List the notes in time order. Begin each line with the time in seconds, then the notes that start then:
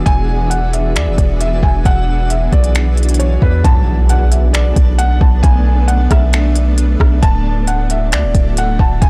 Already playing: E3 B3 D4 F#4 G#4 E5
0.06 E1 G#5, kick, closed hi-hat
0.50 F#5, closed hi-hat
0.73 E5, closed hi-hat
0.96 E2 D5, finger snap, closed hi-hat
1.07 E1
1.18 E1, kick, closed hi-hat
1.41 E5, closed hi-hat
1.63 E1 G#5, kick
1.85 E1 F#5, kick, closed hi-hat
2.30 E5, closed hi-hat
2.52 B1 D5, kick, closed hi-hat
2.64 closed hi-hat
2.75 finger snap, closed hi-hat
2.97 closed hi-hat
3.03 closed hi-hat
3.09 closed hi-hat
3.14 closed hi-hat
3.19 C#5, closed hi-hat
3.42 E2 B4, kick
3.64 B1 A3 B3 D4 A4 A5, kick, closed hi-hat, impact
4.09 F#5, closed hi-hat
4.31 E5, closed hi-hat
4.53 D5, finger snap, closed hi-hat
4.76 B1, kick, closed hi-hat
4.98 F#5, closed hi-hat
5.21 B1 A5, kick
5.43 B1 G#5, kick, closed hi-hat
5.88 F#5, closed hi-hat
6.11 B1 E5, kick, cross-stick, closed hi-hat
6.33 finger snap, closed hi-hat
6.56 closed hi-hat
6.78 closed hi-hat
7.00 B1, kick, cross-stick
7.23 D1 D3 A3 D4 E4 F#4 A5, kick, closed hi-hat
7.67 F#5, closed hi-hat
7.90 E5, closed hi-hat
8.12 D2 D5, finger snap, closed hi-hat
8.23 D1
8.35 D1, kick, closed hi-hat
8.57 F#5, closed hi-hat
8.79 D1 A5, kick
9.02 D1 G#5, kick, closed hi-hat